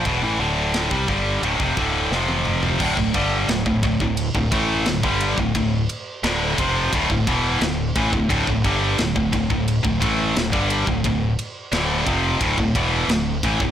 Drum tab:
CC |----------------|x---------------|----------------|----------------|
RD |b---b---b-------|--x-x-x-x-x-x-x-|x-x-x-x-x-x-x-x-|x-x-x-x-x-x-x-x-|
SD |----o-------o---|----o-------o---|----o-------o---|----o-------o---|
T1 |-------------o--|----------------|----------------|----------------|
T2 |--------------o-|----------------|----------------|----------------|
FT |---------------o|----------------|----------------|----------------|
BD |o----oo--oo-----|ooo--ooo-oo--o-o|o-----o-ooo---oo|ooo--ooo-oo--o-o|

CC |----------------|
RD |x-x-x-x-x-x-x-x-|
SD |----o-------o---|
T1 |----------------|
T2 |----------------|
FT |----------------|
BD |o-----o-ooo---oo|